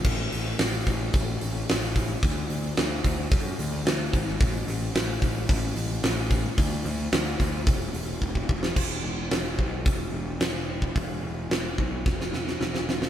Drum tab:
CC |x---------------|----------------|----------------|----------------|
HH |--o-o-o-o-o-o-o-|o-o-o-o-o-o-o-o-|o-o-o-o-o-o-o-o-|o-o-o-o-o-o-----|
SD |----o-------o---|----o-------o--o|----o-------o---|----o----------o|
BD |o-----o-o-----o-|o-----o-o-----o-|o-----o-o-----o-|o-----o-o---ooo-|

CC |x---------------|----------------|
HH |----o---o---o---|o---o-----------|
SD |----o-------o---|----o---oooooooo|
BD |o-----o-o------o|o-----o-o-------|